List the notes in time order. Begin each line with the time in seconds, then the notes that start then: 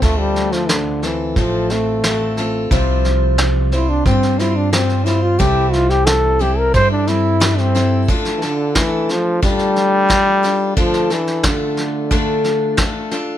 0.02 D2 D3 A3 C4 F4 A4, kick, snare
0.19 G3
0.36 snare
0.52 F3, snare
0.69 D3, snare
1.02 E3 C4 A4, snare
1.36 A1 F3 A3 C4 F4 A4, kick, snare
1.70 A3 C4 F4 A4, snare
2.04 A3 C4 F4 A4, snare
2.37 C4 F4 A4, snare
2.71 C2 C3 F3 G3 C4 F4 C5, kick, snare
3.05 snare
3.38 snare
3.72 G3 C4 E4 F4 C5, snare
3.89 D4
4.06 G2 G3 C4 F4 C5, kick, snare
4.23 snare
4.39 G3 C4 E4 F4 C5, snare
4.56 D4
4.73 G3 C4 F4 C5, snare
4.89 snare
5.05 G3 C4 E4 F4 C5, snare
5.22 F4
5.39 C2 C3 E3 G3 C4 E4 G4 A4, kick, snare
5.73 F4, snare
5.90 G4, snare
6.06 A4, snare
6.39 G3 C4 E4 G4 A4, snare
6.58 A#4
6.74 G2 G3 C4 E4 A4 C5, kick, snare
6.91 D4
7.07 G3 C4 E4 A4, snare
7.40 G3 C4 E4 A4, snare
7.58 C4, snare
7.75 G3 C4 E4 A4, snare
8.08 D3 A3 D4 F4 A4, kick, snare
8.25 snare
8.36 E3
8.42 D3 D4 F4 A4, snare
8.75 E3 A3 D4 A4, kick, snare
9.09 F3, snare
9.42 D3 G3 A3 D4 F4 A4, kick, snare
9.59 snare
9.76 snare
10.09 A3 D4 F4 A4, kick, snare
10.43 D4 F4 A4, snare
10.77 D3 F3 A3 D4 F4 A4, kick, snare
10.94 snare
11.10 E3 D4 A4, snare
11.27 snare
11.43 D3 A3 D4 F4 A4, kick, snare
11.77 snare
12.11 D3 A3 D4 F4 A4, kick, snare
12.44 snare
12.77 A3 D4 F4 A4, kick, snare
13.11 D4 F4 A4, snare